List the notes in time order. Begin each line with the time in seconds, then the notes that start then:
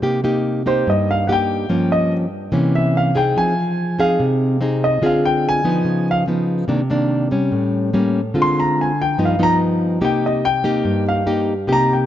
0.02 C3 A#3 D#4 G4
0.24 A#3 D#4 G4
0.66 A#3 D#4 G4 C5
0.87 G2 D#5
1.11 F5
1.27 A#3 D#4 G4 F#5
1.32 G5
1.69 G2 F3 A#3 C#4
1.92 D#5
2.52 C3 E3 A#3 C#4
2.75 E5
2.97 F5
3.15 C4 D#4 G#4 G5
3.36 F3 G#5
3.99 C4 D#4 G#4 F5
4.20 C3
4.61 C4 D#4 G#4
4.84 D#5
5.02 D3 C4 F4 G#4
5.06 F5
5.25 G5
5.49 G#5
5.64 F3 B3 D#4
5.85 C#3
6.11 F5
6.28 F3 B3 D#4
6.68 C3 D#3 A#3 D4
6.90 D#3 A#3 D4
7.31 G3 C#4
7.52 A2
7.94 G3 A#3 C#4
8.34 D3 G#3 C4 F4
8.42 C6
8.60 A#5
8.81 G#5
9.02 G5
9.18 G2 F3 B3 D#4
9.25 F5
9.39 F3 B3 D#4 A#5
10.01 C3 A#3 D#4 G4
10.05 G5
10.26 D#5
10.45 G5
10.64 A#3 D#4 G4
10.85 G2
11.09 F5
11.26 A#3 D#4 G4
11.67 C3 A#3 D#4 G4
11.73 A#5
11.93 G5